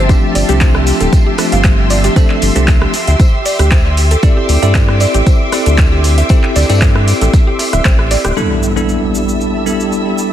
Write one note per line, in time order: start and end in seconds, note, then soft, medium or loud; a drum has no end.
0.00 0.15 G1 medium
0.00 2.90 F4 medium
0.00 8.33 G4 medium
0.00 8.36 E5 medium
0.00 2.90 A5 medium
0.00 8.33 C6 medium
0.00 8.36 E6 medium
0.09 0.46 F3 medium
0.09 0.46 A3 medium
0.09 0.46 C4 medium
0.09 0.46 D4 medium
0.09 0.46 G4 medium
0.09 0.15 C5 medium
0.09 kick loud
0.09 closed hi-hat soft
0.09 tambourine medium
0.09 cabasa soft
0.35 0.44 G1 loud
0.35 0.44 D5 loud
0.35 open hi-hat loud
0.35 tambourine medium
0.35 cabasa medium
0.49 0.92 C2 medium
0.49 1.36 F3 medium
0.49 1.36 A3 medium
0.49 1.36 C4 medium
0.49 1.36 D4 medium
0.49 0.57 G4 loud
0.49 1.36 G4 loud
0.49 closed hi-hat medium
0.49 cabasa soft
0.61 0.65 C5 medium
0.61 kick loud
0.61 snare loud
0.61 clap loud
0.61 closed hi-hat medium
0.61 tambourine medium
0.61 cabasa soft
0.75 cross-stick medium
0.87 open hi-hat medium
0.87 tambourine medium
0.87 cabasa medium
1.01 1.08 D1 medium
1.01 1.09 A4 medium
1.01 closed hi-hat medium
1.01 cabasa soft
1.13 kick loud
1.13 closed hi-hat soft
1.13 tambourine medium
1.13 cabasa soft
1.27 1.35 G4 medium
1.38 2.13 F3 medium
1.38 2.13 A3 medium
1.38 2.13 C4 medium
1.38 2.13 D4 medium
1.38 2.13 G4 medium
1.38 cross-stick medium
1.38 open hi-hat loud
1.38 tambourine medium
1.38 cabasa medium
1.52 2.09 G1 medium
1.52 1.58 F5 medium
1.52 closed hi-hat medium
1.52 cabasa soft
1.64 1.71 C5 medium
1.64 kick loud
1.64 snare loud
1.64 clap loud
1.64 closed hi-hat soft
1.64 tambourine medium
1.64 cabasa soft
1.90 2.00 D5 loud
1.90 open hi-hat medium
1.90 tambourine medium
1.90 cabasa medium
2.04 2.12 G4 loud
2.04 snare medium
2.04 closed hi-hat medium
2.04 cabasa soft
2.16 2.52 F3 medium
2.16 2.52 A3 medium
2.16 2.52 C4 medium
2.16 2.52 D4 medium
2.16 2.52 A4 medium
2.16 2.20 C5 medium
2.16 kick loud
2.16 closed hi-hat medium
2.16 tambourine medium
2.16 cabasa soft
2.30 clap soft
2.42 2.51 G1 loud
2.42 open hi-hat loud
2.42 tambourine medium
2.42 cabasa medium
2.56 2.86 C2 medium
2.56 2.92 F3 medium
2.56 2.92 A3 medium
2.56 2.92 C4 medium
2.56 2.92 D4 medium
2.56 2.92 G4 medium
2.56 2.64 A4 medium
2.56 closed hi-hat medium
2.56 cabasa soft
2.68 kick loud
2.68 snare loud
2.68 clap loud
2.68 closed hi-hat medium
2.68 tambourine medium
2.68 cabasa soft
2.82 2.90 G4 medium
2.82 cross-stick medium
2.94 8.33 E5 medium
2.94 8.33 D6 medium
2.94 open hi-hat medium
2.94 tambourine medium
2.94 cabasa medium
3.08 3.15 D2 medium
3.08 3.13 E5 medium
3.08 snare medium
3.08 closed hi-hat medium
3.08 cabasa soft
3.20 3.26 C5 medium
3.20 kick loud
3.20 closed hi-hat medium
3.20 tambourine medium
3.20 cabasa soft
3.46 3.55 D5 loud
3.46 open hi-hat loud
3.46 tambourine medium
3.46 cabasa medium
3.59 4.16 D2 medium
3.59 3.67 G4 loud
3.59 cross-stick medium
3.59 closed hi-hat medium
3.59 cabasa soft
3.71 3.75 C5 medium
3.71 kick loud
3.71 snare loud
3.71 clap loud
3.71 closed hi-hat medium
3.71 tambourine medium
3.71 cabasa soft
3.97 open hi-hat medium
3.97 tambourine medium
3.97 cabasa medium
4.11 4.19 A4 medium
4.11 closed hi-hat medium
4.11 cabasa soft
4.23 4.59 C4 medium
4.23 4.59 E4 medium
4.23 4.59 G4 medium
4.23 4.59 A4 medium
4.23 4.59 D5 medium
4.23 kick loud
4.23 closed hi-hat medium
4.23 tambourine medium
4.23 cabasa soft
4.37 4.45 G4 medium
4.49 4.57 D2 loud
4.49 open hi-hat medium
4.49 tambourine medium
4.49 cabasa medium
4.62 5.06 G2 medium
4.62 5.49 C4 medium
4.62 5.49 E4 medium
4.62 5.49 G4 medium
4.62 5.50 A4 medium
4.62 5.50 D5 medium
4.62 4.68 E5 medium
4.62 closed hi-hat medium
4.62 cabasa soft
4.74 4.81 C5 medium
4.74 kick loud
4.74 snare loud
4.74 clap loud
4.74 closed hi-hat medium
4.74 tambourine medium
4.74 cabasa soft
4.89 cross-stick medium
5.00 5.10 D5 loud
5.00 open hi-hat medium
5.00 tambourine medium
5.00 cabasa medium
5.14 5.22 A1 medium
5.14 5.23 G4 loud
5.14 closed hi-hat medium
5.14 cabasa soft
5.27 5.30 C5 medium
5.27 kick loud
5.27 closed hi-hat medium
5.27 tambourine medium
5.27 cabasa soft
5.52 6.27 C4 medium
5.52 6.27 E4 medium
5.52 6.27 G4 medium
5.52 6.27 A4 medium
5.52 6.27 D5 medium
5.52 cross-stick medium
5.52 open hi-hat loud
5.52 tambourine medium
5.52 cabasa medium
5.66 6.23 D2 medium
5.66 5.74 A4 medium
5.66 closed hi-hat medium
5.66 cabasa soft
5.78 kick loud
5.78 snare loud
5.78 clap loud
5.78 closed hi-hat medium
5.78 tambourine medium
5.78 cabasa soft
5.92 6.00 G4 medium
6.04 open hi-hat medium
6.04 tambourine medium
6.04 cabasa medium
6.18 6.23 E5 medium
6.18 snare medium
6.18 closed hi-hat medium
6.18 cabasa soft
6.29 6.66 C4 medium
6.29 6.66 E4 medium
6.29 6.66 G4 medium
6.29 6.66 A4 medium
6.29 6.36 C5 medium
6.29 6.66 E5 medium
6.29 kick loud
6.29 closed hi-hat medium
6.29 tambourine medium
6.29 cabasa soft
6.43 clap soft
6.56 6.64 D2 loud
6.56 6.65 D5 loud
6.56 snare medium
6.56 open hi-hat medium
6.56 tambourine medium
6.56 cabasa medium
6.62 snare medium
6.62 tambourine medium
6.69 7.13 G2 medium
6.69 8.34 C4 medium
6.69 8.34 E4 medium
6.69 8.34 G4 medium
6.69 6.78 G4 loud
6.69 8.34 A4 medium
6.69 8.34 D5 medium
6.69 snare medium
6.69 closed hi-hat medium
6.69 tambourine medium
6.69 cabasa soft
6.75 snare medium
6.75 tambourine medium
6.81 6.85 C5 medium
6.81 kick loud
6.81 snare loud
6.81 clap loud
6.81 closed hi-hat medium
6.81 tambourine medium
6.81 cabasa soft
6.95 cross-stick medium
7.08 open hi-hat medium
7.08 tambourine medium
7.08 cabasa medium
7.21 7.29 A1 medium
7.21 7.30 A4 medium
7.21 snare medium
7.21 closed hi-hat medium
7.21 cabasa soft
7.33 kick loud
7.33 snare medium
7.33 closed hi-hat medium
7.33 tambourine medium
7.33 cabasa soft
7.47 7.55 G4 medium
7.59 snare loud
7.59 open hi-hat loud
7.59 tambourine medium
7.59 cabasa medium
7.73 7.81 D1 loud
7.73 7.78 E5 medium
7.73 cross-stick medium
7.73 closed hi-hat medium
7.73 cabasa soft
7.85 8.16 A1 medium
7.85 7.91 C5 medium
7.85 kick loud
7.85 cross-stick medium
7.85 snare loud
7.85 clap loud
7.85 closed hi-hat medium
7.85 tambourine medium
7.85 cabasa soft
7.99 cross-stick medium
8.11 8.20 D5 loud
8.11 snare loud
8.11 open hi-hat medium
8.11 tambourine medium
8.11 cabasa medium
8.25 8.32 D1 medium
8.25 8.33 G4 loud
8.25 cross-stick medium
8.25 closed hi-hat medium
8.25 cabasa soft
8.36 8.73 G3 medium
8.36 8.73 B3 medium
8.36 8.73 D4 medium
8.36 8.73 E4 medium
8.36 10.33 G4 medium
8.36 8.73 A4 medium
8.36 10.33 D5 medium
8.36 10.33 E5 medium
8.36 10.33 A5 medium
8.36 10.33 B5 medium
8.36 10.33 E6 medium
8.36 tambourine medium
8.36 impact medium
8.36 cabasa soft
8.62 tambourine medium
8.62 cabasa medium
8.76 9.63 G3 medium
8.76 9.63 B3 medium
8.76 9.63 D4 medium
8.76 9.63 E4 medium
8.76 9.63 A4 medium
8.76 cabasa soft
8.89 tambourine medium
8.89 cabasa soft
9.15 tambourine medium
9.15 cabasa medium
9.29 cabasa soft
9.39 tambourine medium
9.39 cabasa soft
9.66 10.33 G3 medium
9.66 10.33 B3 medium
9.66 10.33 D4 medium
9.66 10.33 E4 medium
9.66 10.33 A4 medium
9.66 tambourine medium
9.66 cabasa medium
9.80 cabasa soft
9.92 tambourine medium
9.92 cabasa soft
10.18 tambourine medium
10.18 cabasa medium